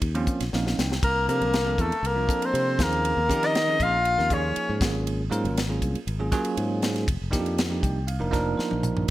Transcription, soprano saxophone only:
1.04 1.27 A#4 medium
1.29 1.83 A#4 medium
1.81 2.08 A4 medium
2.07 2.47 A#4 medium
2.46 2.84 C5 medium
2.83 3.47 A#4 medium
3.46 3.84 D#5 medium
3.83 4.35 F5 loud
4.33 4.82 C#5 medium

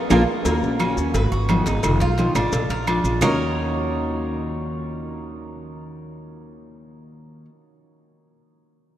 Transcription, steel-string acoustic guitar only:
0.10 0.21 A#3 loud
0.10 0.21 D4 loud
0.10 0.21 F4 loud
0.44 0.61 D#3 medium
0.44 0.61 A#3 medium
0.44 0.61 C#4 medium
0.44 0.60 F#4 medium
0.62 0.78 A#3 soft
0.62 0.79 C#4 soft
0.62 0.79 F#4 medium
0.79 0.96 D#3 medium
0.79 0.96 A#3 medium
0.79 0.96 C#4 medium
0.79 0.95 F#4 medium
0.96 1.14 A#3 soft
0.96 1.14 C#4 soft
0.96 1.13 F#4 medium
1.14 muted steel-string acoustic guitar stroke medium
1.48 1.65 D#3 medium
1.48 1.66 F#3 medium
1.48 1.66 B3 medium
1.48 1.66 D#4 medium
1.48 1.65 G#4 medium
1.66 1.83 B3 soft
1.66 1.83 D#4 medium
1.66 1.83 G#4 medium
1.83 2.00 B2 medium
1.83 2.00 D#3 medium
1.83 2.00 G#3 medium
1.83 2.00 D#4 medium
1.83 2.00 F4 medium
2.01 2.18 G#3 soft
2.01 2.18 D#4 soft
2.01 2.17 F4 medium
2.18 2.35 B2 medium
2.18 2.35 D#3 medium
2.18 2.35 G#3 medium
2.18 2.35 D#4 medium
2.18 2.34 F4 medium
2.36 2.52 G#3 soft
2.36 2.53 D#4 soft
2.36 2.52 F4 medium
2.52 muted steel-string acoustic guitar stroke medium
2.87 3.04 F3 medium
2.87 3.04 G#3 medium
2.87 3.04 D4 medium
2.87 3.03 F4 medium
3.04 3.21 G#3 soft
3.04 3.22 D4 soft
3.04 3.21 F4 medium
3.21 7.48 D#3 medium
3.21 7.49 A#3 medium
3.21 7.49 C#4 medium
3.21 7.50 F#4 medium

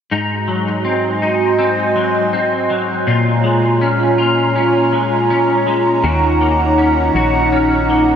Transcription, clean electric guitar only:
0.11 3.06 G#2 medium
0.11 1.21 D#4 medium
0.48 1.95 F#3 medium
0.85 1.57 C4 soft
1.22 3.07 D#4 medium
1.59 2.32 C4 medium
1.96 2.69 F#3 soft
2.33 3.15 C4 soft
2.70 3.15 F#3 soft
3.07 6.03 A#2 medium
3.07 4.17 F4 medium
3.44 4.91 G#3 medium
3.81 4.55 C#4 soft
4.18 6.04 F4 medium
4.56 5.30 C#4 medium
4.92 5.66 G#3 soft
5.30 6.78 C#4 medium
5.67 6.11 G#3 soft
6.04 8.16 D#3 medium
6.04 7.15 F#4 medium
6.41 7.88 A#3 medium
6.78 7.52 C#4 medium
7.16 8.16 F#4 medium
7.52 8.16 C#4 medium
7.90 8.16 A#3 soft

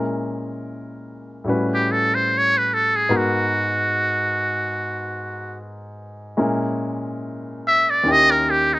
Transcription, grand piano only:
0.00 1.46 A#2 soft
0.00 1.47 G#3 soft
0.00 1.46 C#4 soft
0.00 1.48 E4 soft
0.00 1.49 A#4 medium
1.44 3.09 A2 medium
1.44 3.10 G3 soft
1.44 3.11 C#4 medium
1.44 3.09 F#4 soft
1.49 3.12 B4 medium
3.09 6.37 G#2 medium
3.09 6.35 G#3 medium
3.09 6.37 B3 medium
3.09 6.38 F#4 medium
3.09 6.37 A#4 medium
6.37 8.02 A#2 medium
6.37 8.02 G#3 medium
6.37 8.02 C#4 soft
6.37 8.02 E4 soft
6.37 8.03 A#4 medium
8.03 8.79 D#2 medium
8.03 8.79 D#3 soft
8.03 8.79 C#4 soft
8.03 8.79 E4 soft
8.08 8.79 G4 medium

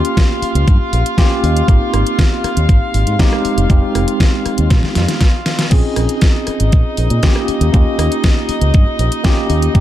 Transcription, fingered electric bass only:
0.42 muted fingered electric bass stroke soft
0.55 0.64 C#2 medium
0.68 0.76 G2 medium
0.81 muted fingered electric bass stroke soft
0.93 1.02 A#1 medium
1.43 1.61 D#2 medium
1.68 1.77 G#1 medium
1.94 2.02 G#1 medium
2.44 muted fingered electric bass stroke soft
2.57 2.65 D#2 medium
2.69 2.78 G#1 medium
2.94 3.03 G#1 medium
3.07 3.16 G#2 medium
3.45 muted fingered electric bass stroke soft
3.58 3.66 F1 medium
3.70 3.79 F1 medium
3.95 4.04 F1 medium
4.46 muted fingered electric bass stroke soft
4.58 4.67 D#2 medium
4.71 4.80 A#1 medium
4.96 5.05 F2 medium
5.72 5.81 A#1 medium
5.97 6.06 A#1 medium
6.47 muted fingered electric bass stroke soft
6.60 6.69 G#1 medium
6.73 6.81 A#1 medium
6.98 7.07 A#1 medium
7.10 7.19 A#2 medium
7.48 muted fingered electric bass stroke soft
7.61 7.69 D#2 medium
7.74 7.82 D#2 loud
7.98 8.07 D#2 medium
8.49 muted fingered electric bass stroke soft
8.61 8.70 C#2 medium
8.74 8.83 G2 medium
8.87 muted fingered electric bass stroke soft
8.99 9.08 A#1 medium
9.50 9.67 D#2 medium
9.75 9.80 G#1 loud

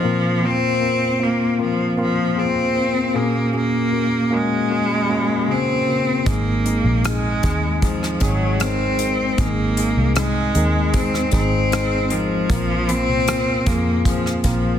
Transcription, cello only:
0.00 0.46 F3 medium
0.45 1.25 C4 loud
1.23 1.61 A#3 medium
1.62 1.97 F3 medium
2.01 2.41 F3 medium
2.39 3.18 C4 medium
3.16 3.54 A#3 medium
3.55 4.35 A#3 medium
4.34 5.52 G#3 medium
5.51 6.29 C4 medium
6.27 7.08 A#3 medium
7.07 7.83 G#3 medium
7.84 8.24 F3 medium
8.22 8.63 F#3 medium
8.61 9.41 C4 medium
9.40 10.17 A#3 medium
10.18 10.97 G#3 medium
10.95 11.34 C4 medium
11.35 12.14 C4 medium
12.12 12.91 F3 medium
12.89 13.70 C4 loud
13.68 14.06 A#3 medium
14.07 14.43 F3 medium
14.46 14.79 F3 medium

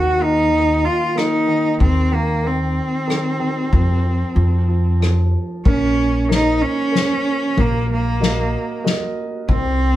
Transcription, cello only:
0.00 0.24 F#4 medium
0.22 0.87 D#4 loud
0.85 1.19 F4 medium
1.18 1.81 D#4 medium
1.82 2.16 C4 medium
2.14 2.48 A#3 medium
2.47 5.02 C4 medium
5.66 6.26 C#4 medium
6.32 6.63 D#4 medium
6.62 7.62 C#4 medium
7.60 7.91 A#3 medium
7.93 8.83 A#3 medium
9.51 9.96 C4 medium

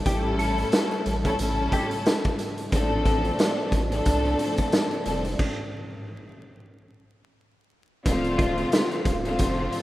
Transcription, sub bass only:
0.06 0.64 A1 loud
1.06 1.35 A1 loud
1.39 1.68 A1 loud
2.73 3.31 A1 loud
3.72 4.01 A1 medium
4.06 4.35 C2 loud
5.06 5.35 F1 loud
8.06 8.64 D1 loud
9.05 9.41 D1 medium
9.40 9.69 F1 loud

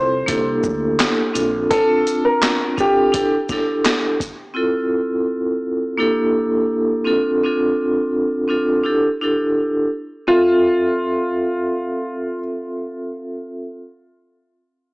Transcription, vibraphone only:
0.00 0.27 C4 loud
0.00 0.26 E4 medium
0.00 0.28 F4 medium
0.00 0.28 A4 loud
0.26 1.34 A#3 loud
0.26 1.33 D4 medium
0.26 1.35 E4 medium
0.26 1.35 G4 medium
0.26 1.35 A4 loud
1.33 1.67 C4 loud
1.33 1.68 D4 medium
1.33 1.68 F4 medium
1.33 1.69 A4 loud
1.72 2.71 C4 medium
1.72 2.72 D4 medium
1.72 2.72 F4 medium
2.76 3.13 C4 medium
2.76 3.11 D4 medium
2.76 3.14 F4 medium
2.76 3.13 A4 loud
3.12 3.35 D4 loud
3.12 3.35 E4 medium
3.12 3.36 G4 loud
3.12 3.36 A4 loud
3.50 4.16 D4 loud
3.50 4.17 E4 medium
3.50 4.17 G4 medium
3.50 4.17 A4 loud
4.54 5.98 C4 loud
4.54 5.98 E4 medium
4.54 5.99 F4 medium
4.54 5.99 A4 loud
5.98 7.06 A#3 loud
5.98 7.04 D4 medium
5.98 7.06 E4 medium
5.98 7.07 G4 medium
5.98 7.06 A4 loud
7.04 7.39 C4 loud
7.04 7.39 D4 medium
7.04 7.40 F4 medium
7.04 7.40 A4 loud
7.43 8.43 C4 loud
7.43 8.43 D4 medium
7.43 8.43 F4 medium
7.43 8.44 A4 loud
8.48 8.84 C4 medium
8.48 8.82 D4 medium
8.48 8.85 F4 medium
8.48 8.85 A4 loud
8.83 9.06 D4 loud
8.83 9.07 E4 medium
8.83 9.07 G4 medium
8.83 9.08 A4 loud
9.21 9.87 D4 loud
9.21 9.88 E4 medium
9.21 9.88 G4 medium
9.21 9.89 A4 loud
10.27 13.74 C4 medium
10.27 13.75 F4 medium
10.27 13.75 A4 medium
10.27 13.75 E5 medium

